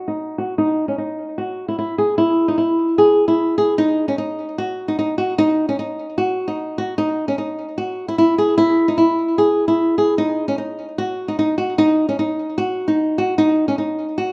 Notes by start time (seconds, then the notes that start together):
0.08 D#4
0.38 F#4
0.58 D#4
0.88 C#4
0.98 D#4
1.38 F#4
1.68 E4
1.79 E4
1.98 G#4
2.18 E4
2.48 D#4
2.58 E4
2.98 G#4
3.28 E4
3.58 G#4
3.78 D#4
4.08 C#4
4.18 D#4
4.58 F#4
4.88 D#4
4.99 D#4
5.18 F#4
5.38 D#4
5.69 C#4
5.79 D#4
6.18 F#4
6.48 D#4
6.78 F#4
6.98 D#4
7.28 C#4
7.38 D#4
7.78 F#4
8.08 E4
8.18 E4
8.38 G#4
8.58 E4
8.88 D#4
8.98 E4
9.38 G#4
9.68 E4
9.98 G#4
10.18 D#4
10.48 C#4
10.58 D#4
10.98 F#4
11.28 D#4
11.39 D#4
11.58 F#4
11.78 D#4
12.09 C#4
12.19 D#4
12.58 F#4
12.88 D#4
13.18 F#4
13.38 D#4
13.68 C#4
13.78 D#4
14.18 F#4